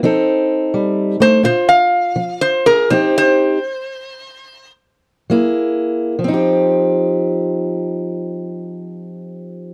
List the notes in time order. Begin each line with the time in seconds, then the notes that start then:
0.03 F3 C4 D#4 A4
0.74 G3
1.20 A3 C5
1.43 A#2 F4 C5
1.69 F5
2.16 F3
2.41 C5
2.66 G#4 A#4
2.90 F3 C4 D#4 G4 C5
3.18 C5
5.30 F#3 A#3 E4 G#4
6.19 F3
6.24 C4
6.28 D#4
6.34 G4